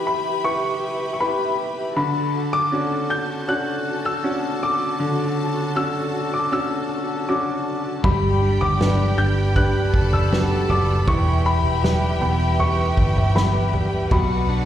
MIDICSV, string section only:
0, 0, Header, 1, 2, 480
1, 0, Start_track
1, 0, Tempo, 759494
1, 1241, Time_signature, 4, 2, 24, 8
1, 9260, End_track
2, 0, Start_track
2, 0, Title_t, "String section"
2, 0, Program_c, 0, 48
2, 0, Note_on_c, 0, 67, 66
2, 0, Note_on_c, 0, 71, 64
2, 0, Note_on_c, 0, 76, 64
2, 0, Note_on_c, 0, 83, 81
2, 1215, Note_off_c, 0, 83, 0
2, 1222, Note_off_c, 0, 67, 0
2, 1222, Note_off_c, 0, 71, 0
2, 1222, Note_off_c, 0, 76, 0
2, 1244, Note_on_c, 0, 81, 86
2, 1246, Note_on_c, 0, 66, 73
2, 1246, Note_on_c, 0, 69, 72
2, 5057, Note_off_c, 0, 81, 0
2, 5058, Note_off_c, 0, 66, 0
2, 5058, Note_off_c, 0, 69, 0
2, 5083, Note_on_c, 0, 83, 78
2, 5084, Note_on_c, 0, 55, 76
2, 5084, Note_on_c, 0, 74, 66
2, 6983, Note_off_c, 0, 74, 0
2, 7000, Note_on_c, 0, 71, 65
2, 7001, Note_on_c, 0, 76, 67
2, 8896, Note_off_c, 0, 83, 0
2, 8897, Note_off_c, 0, 55, 0
2, 8902, Note_off_c, 0, 76, 0
2, 8915, Note_on_c, 0, 81, 81
2, 8917, Note_on_c, 0, 74, 70
2, 8918, Note_on_c, 0, 66, 72
2, 9260, Note_off_c, 0, 66, 0
2, 9260, Note_off_c, 0, 71, 0
2, 9260, Note_off_c, 0, 74, 0
2, 9260, Note_off_c, 0, 81, 0
2, 9260, End_track
0, 0, End_of_file